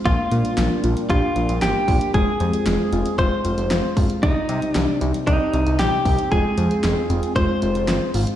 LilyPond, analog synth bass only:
\new Staff \with { instrumentName = "Analog synth bass" } { \clef bass \time 4/4 \key f \dorian \tempo 4 = 115 bes,,16 r16 bes,16 r16 bes,,16 r16 bes,,16 r16 bes,,16 r16 bes,,16 bes,,16 aes,,16 r16 bes,,16 r16 | f,,16 r16 f,16 r16 f,,16 r16 f,,16 r16 f,,16 r16 f,,16 f,,16 f,,16 r16 g,,16 r16 | c,16 r16 c16 r16 c,16 r16 c,16 r16 c,16 r16 c,16 c,16 bes,,16 r16 c,16 r16 | f,,16 r16 f,16 r16 f,,16 r16 f,,16 r16 f,,16 r16 f,,16 f,,16 g,,16 r16 aes,,16 r16 | }